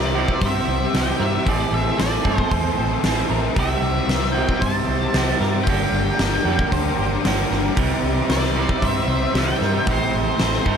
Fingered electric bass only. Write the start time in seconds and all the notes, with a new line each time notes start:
Already playing: C2
0.42 G2
0.67 C2
0.94 C2
1.20 G2
1.46 A1
1.72 A1
1.99 A1
2.26 G2
2.52 E2
2.78 A1
3.03 A1
3.30 A1
3.57 C2
3.81 C2
4.07 C2
4.62 G2
4.88 C2
5.14 C2
5.40 G2
5.68 G1
5.92 G1
6.19 G1
6.45 F2
6.72 D2
6.99 G1
7.24 G1
7.50 G1
7.77 C2
8.03 C2
8.29 C2
8.82 G2
9.07 C2
9.34 C2
9.61 G2
9.87 A1
10.14 A1
10.40 A1
10.66 G2